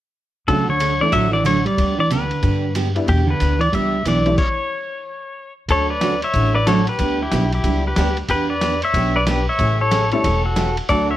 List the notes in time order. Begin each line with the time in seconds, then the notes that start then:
0.48 D2 C#3 D3 F#3 A3 C#4 D4 F#4 A4, kick, ride
0.69 D3 C#5
0.80 D3 F#3 A3 C#4 F#4, hi-hat pedal, ride
1.01 E3 A3 C#4 D4 A4 D5
1.12 A1 D3 F#3 A3 C#4 F#4 E5, kick, ride
1.32 E3 D5, snare
1.44 D3 F#3 A3 C#4 F#4 C#5, hi-hat pedal, ride
1.65 G3 D5, ride
1.78 D2 D3 G3 B3 D4 G4, kick, ride
1.98 E3 D5
2.10 D3 G3 B3 D4 G4 B4, hi-hat pedal, ride
2.31 ride
2.43 G2 D3 G3 B3 D4 G4, kick, ride
2.75 D3 G3 B3 D4 G4, hi-hat pedal, ride
2.95 G3 B3 D4 E4, ride
3.07 E2 B2 E3 B3 D4 G4, kick, ride
3.27 D3 B4
3.40 D2 E3 B3 D4 G4, hi-hat pedal, ride
3.59 E3 D5, ride
3.73 C#2 E3 G3 B3 D4 G4 E5, kick, ride
4.05 B1 E3 B3 D4 G4 D5, hi-hat pedal, ride
4.26 G3 A3 C#4 E4, ride
4.38 C#5, kick, crash
5.68 D2 D3 F#3 A3 C#4 F#4 A4 C#5, kick, ride
5.90 B4 D5
6.01 D3 F#3 A3 C#4 F#4, snare, hi-hat pedal, ride
6.22 C#5 E5, ride
6.34 A1 D3 F#3 A3 C#4 F#4, kick, ride
6.54 B4 D5
6.66 D3 F#3 A3 C#4 D4 F#4 A4 C#5, snare, hi-hat pedal, ride
6.87 G4 B4, ride
6.99 D2 D3 G3 B3 D4 G4, kick, ride
7.22 E4 G4
7.32 B1 D3 G3 B3 D4 G4, snare, hi-hat pedal, ride
7.52 E4 G4, ride
7.64 C#2 D3 G3 B3 D4 G4, kick, ride
7.87 G4 B4
7.96 D2 D3 G3 B3 D4 G4, snare, hi-hat pedal, ride
8.17 ride
8.29 E2 E3 B3 D4 G4 B4, kick, ride
8.50 B4 D5
8.61 E3 B3 D4 G4, snare, hi-hat pedal, ride
8.82 C#5 E5, ride
8.94 B1 E3 B3 D4 G4, kick, ride
9.16 B4 D5
9.27 E3 B3 D4 G4 B4, snare, hi-hat pedal, ride
9.49 C#5 E5
9.59 A1 C#3 E3 A3 C#4 G4, kick, ride
9.81 A4 C#5
9.91 C#3 E3 A3 C#4 G4, snare, hi-hat pedal, ride
10.12 G3 A3 C#4 E4 A4 C#5, ride
10.24 E1 C#3 E3 A3 C#4 G4, kick, ride
10.45 F#4 A4
10.56 C#3 E3 A3 C#4 G4, snare, hi-hat pedal, ride
10.77 ride
10.89 D2 D3 F#3 A3 D4 F#4 A4 D5, kick, ride
11.11 C#5 E5